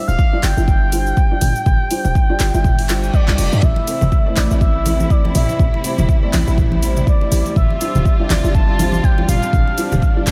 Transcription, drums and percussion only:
0.08 cabasa
0.19 kick, cabasa
0.43 clap, open hi-hat, cabasa
0.57 cabasa
0.68 kick, cabasa
0.92 open hi-hat, cabasa
1.07 cabasa
1.17 kick, cabasa
1.41 open hi-hat, mid tom, cabasa
1.56 cabasa
1.66 kick, mid tom, cabasa
1.91 open hi-hat, cabasa
2.05 mid tom, cabasa
2.15 kick, cabasa
2.40 clap, open hi-hat, cabasa
2.54 cabasa
2.64 kick, mid tom, cabasa
2.79 open hi-hat
2.89 clap, open hi-hat, cabasa
3.03 cabasa
3.14 kick, cabasa
3.28 clap
3.38 open hi-hat, cabasa
3.52 cabasa
3.63 kick, mid tom, high conga, cabasa
3.76 muted conga
3.87 open hi-hat, cabasa
4.01 high conga, low conga, cabasa
4.12 kick, muted conga, cabasa
4.36 clap, open hi-hat, muted conga, high conga, cabasa
4.51 cabasa
4.61 kick, muted conga, cabasa
4.86 open hi-hat, muted conga, high conga, cabasa
5.00 high conga, cabasa
5.10 kick, cabasa
5.25 muted conga, high conga
5.35 open hi-hat, mid tom, cabasa
5.49 muted conga, cabasa
5.59 kick, mid tom, cabasa
5.74 muted conga
5.84 open hi-hat, cabasa
5.98 mid tom, high conga, low conga, cabasa
6.09 kick, muted conga, cabasa
6.33 clap, open hi-hat, muted conga, high conga, cabasa
6.47 cabasa
6.58 kick, mid tom, muted conga, cabasa
6.72 high conga
6.83 open hi-hat, muted conga, cabasa
6.97 low conga, cabasa
7.07 kick, cabasa
7.21 muted conga
7.32 open hi-hat, high conga, cabasa
7.46 muted conga, cabasa
7.56 kick, mid tom, high conga, cabasa
7.70 muted conga
7.81 open hi-hat, cabasa
7.95 high conga, low conga, cabasa
8.05 kick, muted conga, cabasa
8.30 clap, open hi-hat, muted conga, high conga, cabasa
8.44 cabasa
8.54 kick, muted conga, cabasa
8.79 open hi-hat, muted conga, high conga, cabasa
8.92 high conga, cabasa
9.04 kick, cabasa
9.18 muted conga, high conga
9.29 open hi-hat, mid tom, cabasa
9.42 muted conga, cabasa
9.53 kick, mid tom, cabasa
9.68 muted conga
9.78 open hi-hat, cabasa
9.92 mid tom, high conga, low conga, cabasa
10.02 kick, muted conga, cabasa
10.27 clap, open hi-hat, muted conga, high conga, cabasa

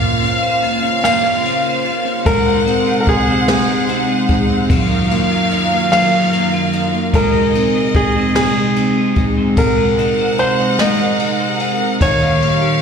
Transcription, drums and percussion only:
0.23 ride
0.64 ride
1.05 snare, ride
1.45 ride
1.85 ride
2.26 kick, ride
2.67 ride
3.07 kick, ride
3.48 snare, ride
3.88 ride
4.29 kick, ride
4.70 kick, ride
5.11 ride
5.51 ride
5.93 snare, ride
6.33 ride
6.73 ride
7.14 kick, ride
7.55 ride
7.94 kick, ride
8.35 snare, ride
8.76 ride
9.16 kick, ride
9.57 kick, ride
9.98 ride
10.38 ride
10.79 snare, ride
11.19 ride
11.60 ride
12.01 kick, ride
12.42 ride

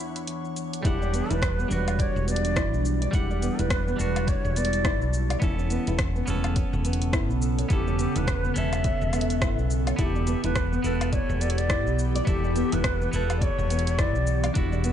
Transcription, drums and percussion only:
0.16 closed hi-hat, shaker
0.27 closed hi-hat, shaker
0.45 shaker
0.56 closed hi-hat, shaker
0.73 closed hi-hat, shaker
0.85 kick, closed hi-hat, shaker
1.02 shaker
1.14 closed hi-hat, shaker
1.31 closed hi-hat, shaker
1.42 kick, cross-stick, closed hi-hat, shaker
1.59 shaker
1.71 shaker
1.88 closed hi-hat, low woodblock, shaker
1.99 kick, closed hi-hat, shaker
2.17 shaker
2.28 closed hi-hat, shaker
2.36 closed hi-hat
2.45 closed hi-hat, shaker
2.56 kick, cross-stick, closed hi-hat, shaker
2.74 shaker
2.85 shaker
3.02 closed hi-hat, shaker
3.13 kick, closed hi-hat, shaker
3.31 shaker
3.42 closed hi-hat, shaker
3.59 closed hi-hat, shaker
3.70 kick, cross-stick, closed hi-hat, shaker
3.88 shaker
3.99 shaker
4.16 closed hi-hat, low woodblock, shaker
4.27 kick, closed hi-hat, shaker
4.45 shaker
4.56 closed hi-hat, shaker
4.65 closed hi-hat
4.73 closed hi-hat, shaker
4.85 kick, cross-stick, closed hi-hat, shaker
5.02 shaker
5.13 shaker
5.30 closed hi-hat, low woodblock, shaker
5.42 kick, closed hi-hat, shaker
5.59 shaker
5.70 closed hi-hat, shaker
5.87 closed hi-hat, shaker
5.99 kick, cross-stick, closed hi-hat, shaker
6.16 shaker
6.27 shaker
6.44 closed hi-hat, low woodblock, shaker
6.56 kick, closed hi-hat, shaker
6.73 shaker
6.85 closed hi-hat, shaker
6.93 closed hi-hat
7.02 closed hi-hat, shaker
7.13 kick, cross-stick, closed hi-hat, shaker
7.30 shaker
7.42 shaker
7.59 closed hi-hat, shaker
7.70 kick, closed hi-hat, shaker
7.88 shaker
7.99 closed hi-hat, shaker
8.16 closed hi-hat, shaker
8.27 kick, cross-stick, closed hi-hat, shaker
8.44 shaker
8.56 closed hi-hat, shaker
8.73 closed hi-hat, low woodblock, shaker
8.84 kick, closed hi-hat, shaker
9.02 shaker
9.13 closed hi-hat, low woodblock, shaker
9.21 closed hi-hat
9.30 closed hi-hat, shaker
9.42 kick, cross-stick, closed hi-hat, shaker
9.59 shaker
9.70 shaker
9.87 closed hi-hat, low woodblock, shaker
9.99 kick, closed hi-hat, shaker
10.16 shaker
10.27 closed hi-hat, shaker
10.44 closed hi-hat, shaker
10.56 kick, cross-stick, closed hi-hat, shaker
10.73 shaker
10.84 shaker
11.01 closed hi-hat, low woodblock, shaker
11.13 kick, closed hi-hat, shaker
11.30 shaker
11.41 closed hi-hat, shaker
11.50 closed hi-hat
11.58 closed hi-hat, shaker
11.70 kick, cross-stick, closed hi-hat, shaker
11.87 shaker
11.99 shaker
12.16 closed hi-hat, shaker
12.27 kick, closed hi-hat, shaker
12.44 shaker
12.56 closed hi-hat, shaker
12.72 closed hi-hat, shaker
12.84 kick, cross-stick, closed hi-hat, shaker
13.02 shaker
13.13 shaker
13.30 closed hi-hat, low woodblock, shaker
13.41 kick, closed hi-hat, shaker
13.59 shaker
13.70 closed hi-hat, shaker
13.79 closed hi-hat
13.87 closed hi-hat, shaker
13.99 kick, cross-stick, closed hi-hat, shaker
14.15 shaker
14.27 shaker
14.44 closed hi-hat, low woodblock, shaker
14.55 kick, closed hi-hat, shaker
14.73 shaker
14.84 closed hi-hat, shaker

